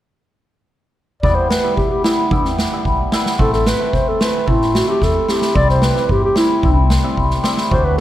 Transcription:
1.23 E2 G3 B3 E4 D5, kick
1.35 C5
1.50 B4, snare
1.63 G3 B3 E4
1.77 B1 G4, kick
1.91 G4
2.04 G3 B3 E4, snare
2.31 E2 G3 B3 E4, kick
2.45 snare
2.59 snare
2.72 G3 B3 E4
2.85 B1, kick
3.12 G3 B3 E4, snare
3.26 snare
3.39 A1 A3 C4 E4 A4, kick
3.53 A4, snare
3.66 B4, snare
3.80 A3 C4 E4
3.93 E2 C5, kick, snare
4.08 A4
4.20 A3 C4 E4 B4, snare
4.46 A1 A3 C4 E4, kick
4.62 snare
4.75 F#4, snare
4.87 A3 C4 E4 G4
5.02 E2 A4, kick, snare
5.28 A3 C4 E4 G4, snare
5.42 snare
5.55 C2 G3 C4 E4 D5, kick
5.69 C5, snare
5.82 B4, snare
5.95 G3 C4 E4, snare
6.09 G2 G4, kick
6.25 G4
6.35 G3 C4 E4, snare
6.63 C2 G3 C4 E4, kick
6.90 snare
7.03 G3 C4 E4
7.17 C2, kick
7.31 snare
7.43 G3 C4 E4, snare
7.57 snare
7.71 D2 F#3 A3 D4 C5, kick
7.85 B4

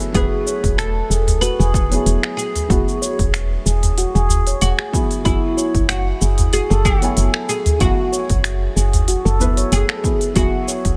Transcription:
Already playing: F#3 A3 B3 E4 G#4 B4 G#5
0.00 open hi-hat, cabasa
0.12 E1 F#3 B3 E4 F#4 G#4, kick, open hi-hat, cabasa
0.16 B4
0.47 C#5, cabasa
0.64 E1, kick, open hi-hat, cabasa
0.78 A4, finger snap, open hi-hat, cabasa
1.10 E1 G#4, cabasa
1.27 open hi-hat, udu, cabasa
1.41 F#4 B4, open hi-hat, cabasa
1.59 E1 G#4, cabasa
1.74 kick, cabasa
1.89 F#3 B3 E4 G#4 C#5, open hi-hat, cabasa
2.06 E1, open hi-hat, cabasa
2.23 G#4, finger snap
2.37 G#4, cabasa
2.55 open hi-hat, udu, cabasa
2.68 E1 F#3 B3 E4 F#4, kick, open hi-hat, cabasa
2.72 F#4
2.88 cabasa
3.02 C#5, cabasa
3.19 E1, kick, open hi-hat, cabasa
3.34 finger snap, open hi-hat, cabasa
3.66 E1 G#4, cabasa
3.83 open hi-hat, udu, cabasa
3.98 F#4, open hi-hat, cabasa
4.15 E1 G#4, cabasa
4.29 udu, cabasa
4.47 C#5, open hi-hat, cabasa
4.61 E1 F#4, open hi-hat, cabasa
4.79 G#4, finger snap
4.93 F#3 B3 E4 G#4, kick, cabasa
5.11 open hi-hat, cabasa
5.23 F#1 F#3 B3 E4 F#4, kick, open hi-hat, cabasa
5.27 G#4
5.57 C#5, cabasa
5.75 F#1, kick, open hi-hat, cabasa
5.89 F#4, finger snap, open hi-hat, cabasa
6.21 F#1 G#4, cabasa
6.38 open hi-hat, udu, cabasa
6.53 F#4 G#4, open hi-hat, cabasa
6.70 F#1 A4, cabasa
6.85 F#4, kick, cabasa
7.00 F#3 B3 E4 C#5 G#5, open hi-hat, cabasa
7.17 F#1, open hi-hat, cabasa
7.34 A4, finger snap
7.49 G#4, cabasa
7.66 open hi-hat, udu, cabasa
7.79 F#1 F#3 B3 E4 F#4, kick, open hi-hat, cabasa
8.12 C#5, cabasa
8.30 F#1, kick, open hi-hat, cabasa
8.44 finger snap, open hi-hat, cabasa
8.76 F#1 G#4, cabasa
8.93 open hi-hat, udu, cabasa
9.08 F#4, open hi-hat, cabasa
9.25 F#1 A4, cabasa
9.39 F#3 B3 E4 B4, udu, cabasa
9.57 C#5, open hi-hat, cabasa
9.72 F#1 G#4, open hi-hat, cabasa
9.89 A4, finger snap
10.03 F#3 B3 E4 G#4, kick, cabasa
10.21 open hi-hat, cabasa
10.33 E1 F#3 B3 E4 F#4, kick, open hi-hat, cabasa
10.38 G#4
10.68 C#5, cabasa
10.85 E1, kick, open hi-hat, cabasa

